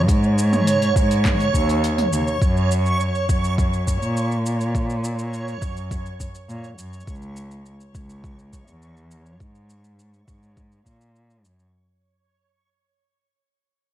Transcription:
Already playing: synth texture C#5
0.08 cello G#2, kick, open hi-hat, shaker
0.24 shaker
0.38 shaker
0.53 mid tom, shaker
0.67 open hi-hat, shaker
0.82 open hi-hat, shaker
0.96 cello G#2, kick, shaker
1.11 open hi-hat, shaker
1.25 kick, clap, mid tom, open hi-hat, shaker
1.40 open hi-hat, shaker
1.54 cello D#2, kick, shaker
1.69 open hi-hat, shaker
1.84 open hi-hat, shaker
1.98 mid tom, open hi-hat
2.12 cello D#2, shaker
2.28 shaker
2.42 cello F#2, kick, shaker
2.57 shaker
2.71 shaker
2.86 shaker
3.00 shaker
3.15 shaker
3.29 cello F#2, kick, shaker
3.44 shaker
3.58 kick, shaker
3.73 shaker
3.87 kick, shaker
4.02 cello A#2, shaker
4.17 shaker
4.32 shaker
4.46 shaker
4.61 shaker
4.75 kick, shaker
4.90 shaker
5.04 shaker
5.19 shaker
5.34 shaker
5.48 shaker
5.62 cello F#2, kick, shaker
5.77 shaker
5.91 kick, shaker
6.06 shaker
6.20 kick, shaker
6.35 shaker
6.49 cello A#2, shaker
6.64 shaker
6.78 cello F#2, shaker
6.93 shaker
7.00 shaker
7.07 cello C#2, kick, shaker
7.15 shaker
7.22 shaker
7.36 shaker
7.51 shaker
7.66 shaker
7.80 shaker
7.95 cello C#2, kick, shaker
8.10 shaker
8.24 kick, shaker
8.39 shaker
8.53 kick, shaker
8.67 cello E2, shaker
8.82 shaker
8.97 shaker
9.11 shaker
9.26 shaker
9.40 cello G#2, kick, shaker
9.55 shaker
9.70 shaker
9.84 shaker
9.99 shaker
10.14 shaker
10.28 cello G#2, kick, shaker
10.43 shaker
10.57 kick, shaker
10.72 shaker
10.86 cello A#2, kick, shaker
11.01 shaker
11.16 shaker
11.30 shaker
11.44 cello F#2, shaker
11.59 shaker

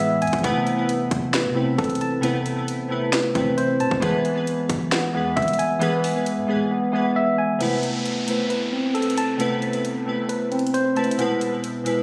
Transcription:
Already playing: 808-style bass A2, synth keys E3 G#3 B3 G#4 B4, tine electric piano B3
0.00 tine electric piano E5
0.22 808-style bass E2, tine electric piano G#5, closed hi-hat
0.27 closed hi-hat
0.33 808-style bass A1, kick, closed hi-hat
0.39 synth keys C3, closed hi-hat
0.43 808-style bass A1, synth keys A3 B3 E4 B4, tine electric piano B3, kick, closed hi-hat
0.67 closed hi-hat
0.76 synth keys C3 A3 B3 E4 B4
0.89 closed hi-hat
1.11 808-style bass A1, kick, closed hi-hat
1.33 tine electric piano B4, snare, closed hi-hat
1.45 808-style bass C3
1.53 synth keys C3 A3 B3 E4 B4, tine electric piano C4
1.78 808-style bass A1, tine electric piano A4, kick, closed hi-hat
1.84 closed hi-hat
1.90 closed hi-hat
1.95 closed hi-hat
2.01 tine electric piano A5, closed hi-hat
2.21 synth keys C3 A3 B3 E4 B4, tine electric piano B3, closed hi-hat
2.46 closed hi-hat
2.55 synth keys C3 A3 B3 E4 B4
2.68 closed hi-hat
2.88 synth keys C3 A3 B3 E4 B4
3.13 tine electric piano B4, snare, closed hi-hat
3.34 808-style bass A1, synth keys C3 A3 B3 E4 B4, tine electric piano C4, kick, closed hi-hat
3.58 tine electric piano C5, closed hi-hat
3.80 808-style bass C3, tine electric piano A5, closed hi-hat
3.91 808-style bass A1, kick
4.00 808-style bass A1, synth keys E3 G#3 B3 G#4 B4, tine electric piano B3, kick, closed hi-hat
4.25 closed hi-hat
4.34 synth keys E3 G#3 B3 G#4 B4
4.47 closed hi-hat
4.69 808-style bass A1, kick, closed hi-hat
4.92 tine electric piano B3, snare, closed hi-hat
5.13 808-style bass E2, synth keys E3 G#3 B3 G#4 B4, tine electric piano B3
5.36 808-style bass C2, tine electric piano E5, kick, closed hi-hat
5.42 closed hi-hat
5.48 closed hi-hat
5.53 closed hi-hat
5.59 tine electric piano G#5, closed hi-hat
5.79 synth keys E3 G#3 B3 G#4 B4, tine electric piano B3, closed hi-hat
6.04 open hi-hat
6.13 synth keys E3 G#3 B3 G#4 B4
6.26 closed hi-hat
6.37 808-style bass A2
6.47 synth keys E3 G#3 B3 G#4 B4
6.54 808-style bass C2
6.71 tine electric piano B3
6.92 synth keys E3 G#3 B3 G#4 B4, tine electric piano B3
7.16 tine electric piano E5
7.38 tine electric piano G#5
7.59 synth keys C3 A3 E4 B4, tine electric piano B3, closed hi-hat, downlifter
7.83 closed hi-hat
7.92 synth keys C3 A3 E4 B4
8.05 closed hi-hat
8.27 synth keys C3 A3 E4 B4, closed hi-hat
8.50 tine electric piano B4, closed hi-hat
8.72 tine electric piano C4
8.95 tine electric piano A4, closed hi-hat
9.02 closed hi-hat
9.10 closed hi-hat
9.18 tine electric piano A5, closed hi-hat
9.38 synth keys C3 A3 E4 B4, tine electric piano B3, closed hi-hat
9.62 closed hi-hat
9.71 synth keys C3 A3 E4 B4, closed hi-hat
9.85 closed hi-hat
10.05 synth keys C3 A3 E4 B4
10.29 tine electric piano B4, closed hi-hat
10.52 tine electric piano C4, closed hi-hat
10.59 closed hi-hat
10.67 closed hi-hat
10.74 tine electric piano C5, closed hi-hat
10.95 synth keys C3 A3 E4 B4, tine electric piano A5, closed hi-hat
11.04 closed hi-hat
11.11 closed hi-hat
11.18 synth keys B2 G#3 E4 B4, tine electric piano B3, closed hi-hat
11.41 closed hi-hat
11.50 synth keys B2 G#3 E4 B4
11.64 closed hi-hat
11.84 synth keys B2 G#3 E4 B4, closed hi-hat

